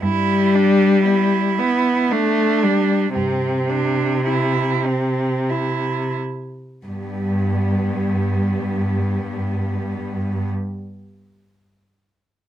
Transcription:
cello
0.02 G2 G3 E4
0.55 D4
1.05 B3 E4
1.59 B3
2.09 A3 B3 D4
2.63 G3
3.13 G2 C3 C4
3.70 D4
4.26 E4
4.87 C4
5.50 E4
6.87 G2 G3 B3

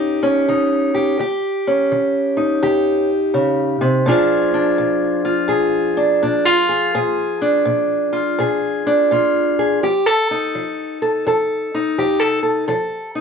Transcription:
steel-string acoustic guitar
Already playing: D#3 C#4 D#4 G4
0.23 C#4
0.48 D#3 D#4
0.94 G4
1.19 D#3 G4
1.67 C#4
1.92 D#3
2.37 D#4
2.63 D#3 G4
3.34 C#3
3.81 C3
4.06 A#2 F3 D4 F4 G#4
4.54 D4
4.78 A#2
5.25 F4
5.48 A#2 G#4
5.97 D4
6.23 A#2 D4
6.45 F4
6.69 G#4
6.95 A#2 G#4
7.42 D4
7.65 A#2
8.13 F4
8.39 A#2 G#4
8.86 D4
9.11 A#2 F4
9.59 G#4
9.83 F3 G4
10.06 A4
10.31 D#4
10.55 F3
11.02 A4
11.27 F3 A4
11.74 D#4
11.98 F3 G4
12.20 A4
12.43 A4
12.68 F3 A4
13.15 D#4

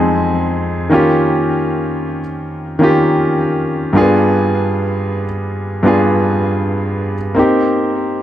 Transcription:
grand piano
Already playing: F2 G#3 C4 D#4 G4 G#4
0.89 D#3 A#3 C#4 F4
0.94 G4
2.79 D#3 A#3 C#4 F4
2.83 G4
3.93 G2 A#3 D4 F4
3.98 B3 G#4
5.83 G2 B3 D4 F4
5.87 G#4
7.35 A#3 C4 D#4
7.39 G4

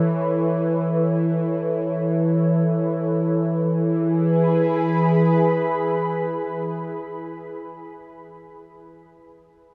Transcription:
analog synth pad
Already playing: E3 E4 A4 B4 C#5
3.65 E3
3.85 E4
3.99 G#4
4.13 B4
4.30 B5

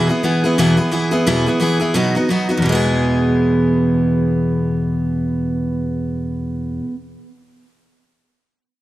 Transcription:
steel-string acoustic guitar
0.09 E3 B3 E4 G#4
0.23 E3 B3 E4 G#4
0.44 E3 B3 E4 G#4
0.58 E2 B2 E3 B3 E4 G#4
0.77 E3 B3 E4 G#4
0.92 E3 B3 E4 G#4
1.11 E3 B3 E4 G#4
1.27 E2 B2 E3 B3 E4 G#4
1.46 E3 B3 E4 G#4
1.60 E3 B3 E4 G#4
1.80 E3 B3 E4 G#4
1.94 B2 F#3 B3 D#4 F#4
2.15 B3 D#4 F#4
2.29 F#3 B3 D#4 F#4
2.49 B3 D#4 F#4
2.57 E2
2.62 B2 E3
2.69 G#3 B3
2.75 G#4

